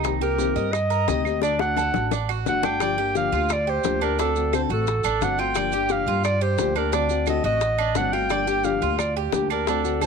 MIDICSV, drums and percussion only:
0, 0, Header, 1, 2, 480
1, 0, Start_track
1, 0, Key_signature, -2, "minor"
1, 0, Tempo, 344037
1, 60, Time_signature, 4, 2, 24, 8
1, 14040, End_track
2, 0, Start_track
2, 0, Title_t, "Drums"
2, 53, Note_on_c, 9, 75, 61
2, 55, Note_on_c, 9, 70, 63
2, 67, Note_on_c, 9, 60, 82
2, 192, Note_off_c, 9, 75, 0
2, 195, Note_off_c, 9, 70, 0
2, 206, Note_off_c, 9, 60, 0
2, 307, Note_on_c, 9, 70, 30
2, 446, Note_off_c, 9, 70, 0
2, 537, Note_on_c, 9, 60, 53
2, 548, Note_on_c, 9, 70, 65
2, 677, Note_off_c, 9, 60, 0
2, 687, Note_off_c, 9, 70, 0
2, 791, Note_on_c, 9, 70, 29
2, 931, Note_off_c, 9, 70, 0
2, 1020, Note_on_c, 9, 75, 62
2, 1022, Note_on_c, 9, 60, 73
2, 1038, Note_on_c, 9, 70, 66
2, 1159, Note_off_c, 9, 75, 0
2, 1161, Note_off_c, 9, 60, 0
2, 1178, Note_off_c, 9, 70, 0
2, 1273, Note_on_c, 9, 70, 29
2, 1413, Note_off_c, 9, 70, 0
2, 1505, Note_on_c, 9, 60, 64
2, 1505, Note_on_c, 9, 61, 84
2, 1518, Note_on_c, 9, 70, 70
2, 1644, Note_off_c, 9, 60, 0
2, 1644, Note_off_c, 9, 61, 0
2, 1658, Note_off_c, 9, 70, 0
2, 1746, Note_on_c, 9, 75, 68
2, 1763, Note_on_c, 9, 70, 29
2, 1886, Note_off_c, 9, 75, 0
2, 1902, Note_off_c, 9, 70, 0
2, 1975, Note_on_c, 9, 60, 80
2, 2003, Note_on_c, 9, 70, 71
2, 2115, Note_off_c, 9, 60, 0
2, 2142, Note_off_c, 9, 70, 0
2, 2223, Note_on_c, 9, 60, 95
2, 2246, Note_on_c, 9, 70, 29
2, 2363, Note_off_c, 9, 60, 0
2, 2386, Note_off_c, 9, 70, 0
2, 2464, Note_on_c, 9, 61, 74
2, 2471, Note_on_c, 9, 75, 62
2, 2485, Note_on_c, 9, 70, 70
2, 2603, Note_off_c, 9, 61, 0
2, 2610, Note_off_c, 9, 75, 0
2, 2625, Note_off_c, 9, 70, 0
2, 2705, Note_on_c, 9, 61, 89
2, 2727, Note_on_c, 9, 70, 27
2, 2844, Note_off_c, 9, 61, 0
2, 2867, Note_off_c, 9, 70, 0
2, 2949, Note_on_c, 9, 61, 85
2, 2959, Note_on_c, 9, 70, 68
2, 3088, Note_off_c, 9, 61, 0
2, 3099, Note_off_c, 9, 70, 0
2, 3196, Note_on_c, 9, 75, 76
2, 3207, Note_on_c, 9, 70, 30
2, 3336, Note_off_c, 9, 75, 0
2, 3347, Note_off_c, 9, 70, 0
2, 3435, Note_on_c, 9, 61, 90
2, 3442, Note_on_c, 9, 70, 70
2, 3574, Note_off_c, 9, 61, 0
2, 3582, Note_off_c, 9, 70, 0
2, 3673, Note_on_c, 9, 61, 96
2, 3684, Note_on_c, 9, 70, 28
2, 3813, Note_off_c, 9, 61, 0
2, 3823, Note_off_c, 9, 70, 0
2, 3912, Note_on_c, 9, 60, 86
2, 3912, Note_on_c, 9, 75, 61
2, 3920, Note_on_c, 9, 70, 64
2, 4052, Note_off_c, 9, 60, 0
2, 4052, Note_off_c, 9, 75, 0
2, 4060, Note_off_c, 9, 70, 0
2, 4400, Note_on_c, 9, 60, 56
2, 4401, Note_on_c, 9, 70, 65
2, 4539, Note_off_c, 9, 60, 0
2, 4540, Note_off_c, 9, 70, 0
2, 4641, Note_on_c, 9, 70, 29
2, 4780, Note_off_c, 9, 70, 0
2, 4871, Note_on_c, 9, 70, 75
2, 4884, Note_on_c, 9, 75, 69
2, 4885, Note_on_c, 9, 60, 79
2, 5011, Note_off_c, 9, 70, 0
2, 5024, Note_off_c, 9, 75, 0
2, 5025, Note_off_c, 9, 60, 0
2, 5355, Note_on_c, 9, 70, 70
2, 5368, Note_on_c, 9, 60, 66
2, 5368, Note_on_c, 9, 61, 76
2, 5495, Note_off_c, 9, 70, 0
2, 5508, Note_off_c, 9, 60, 0
2, 5508, Note_off_c, 9, 61, 0
2, 5601, Note_on_c, 9, 70, 30
2, 5608, Note_on_c, 9, 75, 72
2, 5741, Note_off_c, 9, 70, 0
2, 5748, Note_off_c, 9, 75, 0
2, 5841, Note_on_c, 9, 70, 64
2, 5853, Note_on_c, 9, 60, 78
2, 5980, Note_off_c, 9, 70, 0
2, 5993, Note_off_c, 9, 60, 0
2, 6079, Note_on_c, 9, 70, 57
2, 6089, Note_on_c, 9, 60, 36
2, 6219, Note_off_c, 9, 70, 0
2, 6228, Note_off_c, 9, 60, 0
2, 6325, Note_on_c, 9, 75, 64
2, 6326, Note_on_c, 9, 70, 65
2, 6327, Note_on_c, 9, 60, 53
2, 6464, Note_off_c, 9, 75, 0
2, 6466, Note_off_c, 9, 70, 0
2, 6467, Note_off_c, 9, 60, 0
2, 6550, Note_on_c, 9, 70, 25
2, 6565, Note_on_c, 9, 60, 37
2, 6689, Note_off_c, 9, 70, 0
2, 6704, Note_off_c, 9, 60, 0
2, 6793, Note_on_c, 9, 70, 69
2, 6809, Note_on_c, 9, 60, 75
2, 6932, Note_off_c, 9, 70, 0
2, 6948, Note_off_c, 9, 60, 0
2, 7028, Note_on_c, 9, 70, 63
2, 7044, Note_on_c, 9, 75, 75
2, 7168, Note_off_c, 9, 70, 0
2, 7183, Note_off_c, 9, 75, 0
2, 7274, Note_on_c, 9, 70, 70
2, 7283, Note_on_c, 9, 60, 64
2, 7283, Note_on_c, 9, 61, 83
2, 7413, Note_off_c, 9, 70, 0
2, 7423, Note_off_c, 9, 60, 0
2, 7423, Note_off_c, 9, 61, 0
2, 7507, Note_on_c, 9, 70, 30
2, 7516, Note_on_c, 9, 60, 33
2, 7646, Note_off_c, 9, 70, 0
2, 7655, Note_off_c, 9, 60, 0
2, 7740, Note_on_c, 9, 70, 74
2, 7752, Note_on_c, 9, 60, 79
2, 7760, Note_on_c, 9, 75, 64
2, 7880, Note_off_c, 9, 70, 0
2, 7891, Note_off_c, 9, 60, 0
2, 7900, Note_off_c, 9, 75, 0
2, 7982, Note_on_c, 9, 70, 63
2, 8121, Note_off_c, 9, 70, 0
2, 8214, Note_on_c, 9, 70, 62
2, 8230, Note_on_c, 9, 60, 59
2, 8353, Note_off_c, 9, 70, 0
2, 8369, Note_off_c, 9, 60, 0
2, 8464, Note_on_c, 9, 70, 29
2, 8604, Note_off_c, 9, 70, 0
2, 8706, Note_on_c, 9, 70, 70
2, 8716, Note_on_c, 9, 75, 63
2, 8717, Note_on_c, 9, 60, 74
2, 8845, Note_off_c, 9, 70, 0
2, 8855, Note_off_c, 9, 75, 0
2, 8857, Note_off_c, 9, 60, 0
2, 9183, Note_on_c, 9, 70, 69
2, 9188, Note_on_c, 9, 60, 62
2, 9188, Note_on_c, 9, 61, 76
2, 9323, Note_off_c, 9, 70, 0
2, 9327, Note_off_c, 9, 60, 0
2, 9327, Note_off_c, 9, 61, 0
2, 9425, Note_on_c, 9, 70, 31
2, 9432, Note_on_c, 9, 75, 72
2, 9565, Note_off_c, 9, 70, 0
2, 9571, Note_off_c, 9, 75, 0
2, 9663, Note_on_c, 9, 70, 72
2, 9670, Note_on_c, 9, 60, 83
2, 9803, Note_off_c, 9, 70, 0
2, 9810, Note_off_c, 9, 60, 0
2, 9899, Note_on_c, 9, 70, 59
2, 9913, Note_on_c, 9, 60, 38
2, 10038, Note_off_c, 9, 70, 0
2, 10053, Note_off_c, 9, 60, 0
2, 10132, Note_on_c, 9, 70, 64
2, 10140, Note_on_c, 9, 75, 66
2, 10149, Note_on_c, 9, 60, 58
2, 10272, Note_off_c, 9, 70, 0
2, 10279, Note_off_c, 9, 75, 0
2, 10288, Note_off_c, 9, 60, 0
2, 10381, Note_on_c, 9, 70, 29
2, 10393, Note_on_c, 9, 60, 35
2, 10520, Note_off_c, 9, 70, 0
2, 10532, Note_off_c, 9, 60, 0
2, 10614, Note_on_c, 9, 70, 73
2, 10620, Note_on_c, 9, 60, 70
2, 10754, Note_off_c, 9, 70, 0
2, 10760, Note_off_c, 9, 60, 0
2, 10863, Note_on_c, 9, 75, 70
2, 11002, Note_off_c, 9, 75, 0
2, 11092, Note_on_c, 9, 70, 78
2, 11094, Note_on_c, 9, 60, 67
2, 11094, Note_on_c, 9, 61, 77
2, 11231, Note_off_c, 9, 70, 0
2, 11234, Note_off_c, 9, 60, 0
2, 11234, Note_off_c, 9, 61, 0
2, 11342, Note_on_c, 9, 60, 35
2, 11345, Note_on_c, 9, 70, 31
2, 11481, Note_off_c, 9, 60, 0
2, 11485, Note_off_c, 9, 70, 0
2, 11574, Note_on_c, 9, 70, 68
2, 11585, Note_on_c, 9, 60, 73
2, 11587, Note_on_c, 9, 75, 65
2, 11713, Note_off_c, 9, 70, 0
2, 11725, Note_off_c, 9, 60, 0
2, 11726, Note_off_c, 9, 75, 0
2, 11822, Note_on_c, 9, 70, 57
2, 11961, Note_off_c, 9, 70, 0
2, 12054, Note_on_c, 9, 70, 60
2, 12062, Note_on_c, 9, 60, 59
2, 12194, Note_off_c, 9, 70, 0
2, 12201, Note_off_c, 9, 60, 0
2, 12300, Note_on_c, 9, 70, 26
2, 12440, Note_off_c, 9, 70, 0
2, 12539, Note_on_c, 9, 60, 67
2, 12541, Note_on_c, 9, 75, 64
2, 12551, Note_on_c, 9, 70, 64
2, 12678, Note_off_c, 9, 60, 0
2, 12681, Note_off_c, 9, 75, 0
2, 12690, Note_off_c, 9, 70, 0
2, 13010, Note_on_c, 9, 60, 68
2, 13010, Note_on_c, 9, 61, 83
2, 13019, Note_on_c, 9, 70, 78
2, 13149, Note_off_c, 9, 60, 0
2, 13149, Note_off_c, 9, 61, 0
2, 13158, Note_off_c, 9, 70, 0
2, 13256, Note_on_c, 9, 70, 30
2, 13257, Note_on_c, 9, 75, 67
2, 13396, Note_off_c, 9, 70, 0
2, 13396, Note_off_c, 9, 75, 0
2, 13495, Note_on_c, 9, 60, 83
2, 13496, Note_on_c, 9, 70, 65
2, 13635, Note_off_c, 9, 60, 0
2, 13635, Note_off_c, 9, 70, 0
2, 13732, Note_on_c, 9, 60, 33
2, 13738, Note_on_c, 9, 70, 60
2, 13872, Note_off_c, 9, 60, 0
2, 13877, Note_off_c, 9, 70, 0
2, 13970, Note_on_c, 9, 60, 57
2, 13975, Note_on_c, 9, 75, 58
2, 13980, Note_on_c, 9, 70, 58
2, 14040, Note_off_c, 9, 60, 0
2, 14040, Note_off_c, 9, 70, 0
2, 14040, Note_off_c, 9, 75, 0
2, 14040, End_track
0, 0, End_of_file